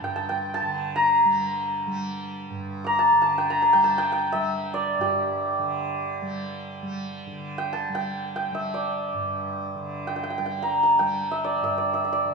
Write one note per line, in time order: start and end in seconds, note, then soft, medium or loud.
0.00 2.49 G2 medium
0.00 0.61 D3 medium
0.00 1.25 G3 medium
0.00 0.29 G5 medium
0.00 0.15 A5 medium
0.16 0.54 A5 medium
0.29 2.36 G5 medium
0.54 1.02 A5 medium
0.62 3.11 D3 medium
0.96 2.81 A#5 medium
1.25 1.87 G3 medium
1.87 3.74 G3 medium
2.50 4.97 G2 medium
2.84 3.05 A#5 medium
2.84 4.47 D6 medium
2.99 3.21 A5 medium
3.12 5.58 D3 medium
3.22 3.56 A5 medium
3.38 3.73 G5 medium
3.50 3.68 A#5 medium
3.62 3.84 A5 medium
3.73 4.34 G3 medium
3.73 3.98 G5 medium
3.84 5.77 A5 medium
3.98 4.12 G5 medium
4.12 6.19 G5 medium
4.32 6.22 G3 medium
4.32 6.63 E5 medium
4.74 7.20 D5 medium
4.98 9.13 G2 medium
4.98 8.15 G4 medium
5.59 7.26 D3 medium
6.22 6.82 G3 medium
6.82 7.89 G3 medium
7.27 9.75 D3 medium
7.58 7.94 G5 medium
7.73 9.66 A5 medium
7.89 8.51 G3 medium
7.95 8.35 G5 medium
8.36 10.07 G5 medium
8.51 10.38 G3 medium
8.51 10.86 E5 medium
8.74 11.20 D5 medium
9.14 11.61 G2 medium
9.75 12.24 D3 medium
10.07 10.16 G5 medium
10.16 10.23 G5 medium
10.23 10.30 G5 medium
10.30 10.37 G5 medium
10.38 11.00 G3 soft
10.38 10.45 G5 medium
10.46 10.99 G5 medium
10.62 10.89 A#5 medium
10.83 12.34 A5 medium
10.99 12.34 G3 medium
10.99 12.34 G5 medium
11.31 11.63 E5 medium
11.44 11.77 D5 medium
11.62 12.34 G2 soft
11.62 11.93 E5 medium
11.78 12.12 D5 medium
11.94 12.04 E5 medium
12.05 12.34 E5 medium
12.13 12.34 D5 medium
12.25 12.34 D3 medium